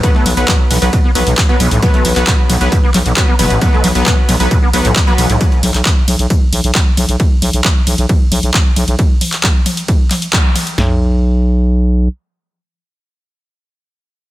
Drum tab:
RD |x-x-x-x-x-x-x-x-|x-x-x-x-x-x-x-x-|x-x-x-x-x-x-x-x-|x-x-x-x-x-x-x-x-|
HH |x-oxx-oxx-oxx-ox|xxoxx-oxx-oxx-ox|x-oxx-oxx-oxx-ox|xxoxx-oxx-oxx-ox|
TB |x-x-x---x-x-x-x-|x-x-x-x-x-x-x-x-|x-x-x---x-x-x-x-|x-x-x-x-x-x-x-x-|
CP |----x-------x---|---xx-----x-x---|----x-------x---|---xx-------x---|
SD |-o--o-------o---|----o-------o---|-o--o-------o---|----o-------o---|
T2 |o-o-o-o-o-o-o-o-|o-o-o-o-o-o-o-o-|o-o-o-o-o-o-o-o-|o-o-o-o-o-o-o-o-|
FT |----------------|----------------|----------------|----------------|
BD |o---o---o---o---|o---o---o---o---|o---o---o---o---|o---o---o---o---|

RD |x-x-x-x-x-x-x-x-|x-x-x-x-x-x-x-x-|----------------|----------------|
HH |x-oxx-oxx-oxx-ox|x-oxx-oxx-oxx-ox|----------------|----------------|
TB |----------------|----------------|----------------|----------------|
CP |----x-------x---|---xx-----x-x---|----------------|----------------|
SD |----------------|----------------|o---------------|----------------|
T2 |o-o-o-o-o-o-o-o-|o-o-o-o-o-o-o-o-|----------------|----------------|
FT |----------------|----------------|o---------------|----------------|
BD |o---o---o---o---|o---o---o---o---|----------------|----------------|